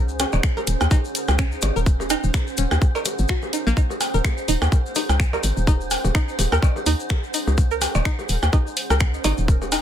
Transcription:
Already playing: fm bass C#2, ambient pad C#4 G#4 F#5, synth drone C5
0.09 maracas
0.20 synth pluck C#4, closed hi-hat, percussion blips, maracas
0.32 fm bass D#1, percussion blips, maracas
0.43 finger snap, kick, maracas
0.57 synth pluck A#4, percussion blips, maracas
0.67 fm bass D#1, closed hi-hat, maracas
0.81 fm bass D#2, percussion blips, maracas
0.91 synth pluck D#4, kick, percussion blips, maracas
1.05 maracas
1.15 closed hi-hat, maracas
1.28 fm bass C#2, percussion blips, maracas
1.39 synth pluck C#4, finger snap, kick, maracas
1.52 maracas
1.62 fm bass G#1, closed hi-hat, percussion blips, maracas
1.76 fm bass D#1, synth pluck A#4, maracas
1.86 kick, maracas
2.00 percussion blips, maracas
2.10 synth pluck D#4, closed hi-hat, percussion blips, maracas
2.24 fm bass D#1, maracas
2.34 finger snap, kick, percussion blips, maracas
2.47 maracas
2.57 fm bass D#1, synth pluck C#4, closed hi-hat, maracas
2.71 fm bass D#2, percussion blips, maracas
2.82 kick, maracas
2.95 synth pluck A#4, percussion blips, maracas
3.05 closed hi-hat, percussion blips, maracas
3.19 fm bass G#1, maracas
3.28 synth pluck F#4, finger snap, kick, maracas
3.42 percussion blips, maracas
3.53 synth pluck D#4, closed hi-hat, maracas
3.67 fm bass A#1, synth pluck A#3, maracas
3.77 synth pluck D#4, kick, maracas
3.90 percussion blips, maracas
4.01 open hi-hat, percussion blips, maracas
4.14 fm bass D#1, synth pluck A#4, maracas
4.24 finger snap, kick, percussion blips, maracas
4.38 maracas
4.48 fm bass D#1, synth pluck D#4, open hi-hat, maracas
4.62 fm bass D#2, percussion blips, maracas
4.72 kick, maracas
4.86 maracas
4.95 synth pluck D#4, open hi-hat, percussion blips, maracas
5.09 fm bass C#2, percussion blips, maracas
5.20 finger snap, kick, maracas
5.33 synth pluck A#4, percussion blips, maracas
5.43 fm bass G#1, open hi-hat, maracas
5.57 fm bass D#1, maracas
5.67 synth pluck D#4, kick, percussion blips, maracas
5.81 maracas
5.91 open hi-hat, percussion blips, maracas
6.05 fm bass D#1, percussion blips, maracas
6.15 synth pluck D#4, finger snap, kick, maracas
6.28 maracas
6.39 fm bass D#1, open hi-hat, percussion blips, maracas
6.52 fm bass D#2, synth pluck A#4, percussion blips, maracas
6.62 kick, percussion blips, maracas
6.76 percussion blips, maracas
6.86 fm bass D#2, synth pluck D#4, open hi-hat, maracas
7.00 maracas
7.10 finger snap, kick, percussion blips, maracas
7.24 maracas
7.34 synth pluck D#4, open hi-hat, maracas
7.47 fm bass C#2, percussion blips, maracas
7.58 kick, maracas
7.71 synth pluck A#4, maracas
7.81 open hi-hat, percussion blips, maracas
7.95 fm bass D#1, percussion blips, maracas
8.05 synth pluck D#4, finger snap, kick, maracas
8.19 percussion blips, maracas
8.29 fm bass D#1, open hi-hat, maracas
8.43 fm bass D#2, percussion blips, maracas
8.53 synth pluck D#4, kick, percussion blips, maracas
8.67 maracas
8.77 open hi-hat, maracas
8.90 fm bass C#2, synth pluck A#4, percussion blips, maracas
9.00 finger snap, kick, maracas
9.14 maracas
9.24 fm bass G#1, synth pluck D#4, open hi-hat, percussion blips, maracas
9.37 fm bass D#1, maracas
9.48 kick, maracas
9.62 percussion blips, maracas
9.72 synth pluck D#4, open hi-hat, percussion blips, maracas

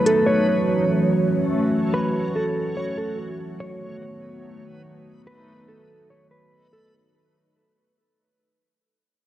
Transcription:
Already playing: analog synth pad D#3 F#3 A3 B3 F#4, synth texture A3 D#4 B4
0.06 clean electric guitar A4, closed hi-hat
0.26 analog synth pad E3 C#4 F#4, synth texture F#4 C#5, clean electric guitar C#5
1.94 clean electric guitar B4
2.36 clean electric guitar A4
2.77 clean electric guitar C#5
2.98 clean electric guitar A4
3.60 analog synth pad D#3 A3 B3, synth texture A3 D#4 B4, clean electric guitar C#5
5.27 clean electric guitar B4
5.68 clean electric guitar A4
6.10 clean electric guitar C#5
6.31 clean electric guitar B4
6.73 clean electric guitar A4

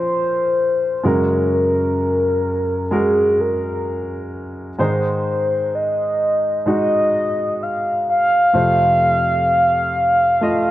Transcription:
Already playing: grand piano A#2 F3 C#4 A#4, soft synth lead C5
1.03 grand piano F#2 C#3 G#3 F#4 A#4, soft synth lead A#4
1.53 soft synth lead A#4
2.91 grand piano G#3 F#4 A#4, soft synth lead G#4
3.40 soft synth lead A#4
4.79 grand piano G#2 D#3 G#3 D#4 C5, soft synth lead C5
5.75 soft synth lead D#5
6.66 grand piano G#3 D#4 F#4, soft synth lead D#5
7.63 soft synth lead F5
8.10 soft synth lead F5
8.53 grand piano F2 C3 A3 F4 C5
10.41 grand piano A3 F4 D#5

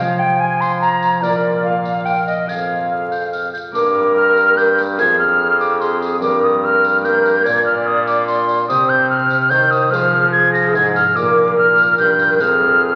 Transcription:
Already playing: harp G#3 F4
0.00 harp F3 C5, trombone F3, recorder F5, flute G#6, tambourine
0.19 recorder G5
0.40 recorder G#5, flute G#6
0.61 recorder C6, tambourine
0.81 recorder A#5, tambourine
1.03 tambourine
1.21 trombone A#2, harp A#3 F4 A#4, recorder D5, flute F6, tambourine
1.25 harp A#2
1.62 harp A#3 F4 A#4, recorder F5, flute F6
1.85 tambourine
2.05 recorder G5, tambourine
2.26 recorder D#5, tambourine
2.45 harp F2 C4 F4 G#4, recorder F5, flute G#6
2.49 trombone F2, tambourine
2.91 flute F6
3.12 flute G6, tambourine
3.32 flute F6, tambourine
3.53 flute G6, tambourine
3.72 trombone G2, harp A#3 D4 G4, recorder A#4, flute D6, tambourine
3.76 harp G2
4.16 flute F6
4.37 tambourine
4.54 harp A#3 D4 G4, recorder A#4, flute G6
4.58 tambourine
4.79 tambourine
4.97 trombone F2, harp F2 C4 F4 G#4, recorder G#4, flute G#6, tambourine
5.19 flute F6
5.60 flute D6, tambourine
5.81 recorder G#4, flute C6, tambourine
6.02 flute D#6, tambourine
6.19 trombone G2, harp A#3 D4 A#4, recorder A#4, flute D6, tambourine
6.23 harp G2
6.43 flute D#6
6.64 flute F6
6.84 tambourine
7.01 harp A#3 D4 A#4, recorder A#4, flute G6
7.05 tambourine
7.26 tambourine
7.43 trombone A#2, harp A#2 A#3 D4 D5, recorder D5, flute G#6, tambourine
7.66 flute F6
7.87 flute D#6
8.07 flute D6, tambourine
8.27 flute C6, tambourine
8.49 tambourine
8.68 trombone C3, harp C3 G4 C5, recorder C5, flute D#6, tambourine
8.89 flute G6
9.10 flute F6
9.30 tambourine
9.50 harp D#3, trombone D#3, recorder C5, flute G6, tambourine
9.71 flute D#6, tambourine
9.90 trombone F3, harp F3 G#3 F4 C5, recorder G#4, flute F6, tambourine
10.32 recorder G#4, flute G#6
10.53 flute A#6, tambourine
10.75 harp G#2, trombone G#2, recorder G#4, flute G#6, tambourine
10.96 flute F6, tambourine
11.13 trombone A#2, harp A#3 F4 A#4, flute D6, tambourine
11.17 harp A#2, recorder A#4
11.54 harp A#3 F4 A#4, flute F6
11.58 recorder A#4
11.78 tambourine
11.98 harp G2, trombone G2, flute G6, tambourine
12.19 tambourine
12.37 trombone F2, harp G#3 F4 C5, recorder G#4, flute F6, tambourine
12.41 harp F2

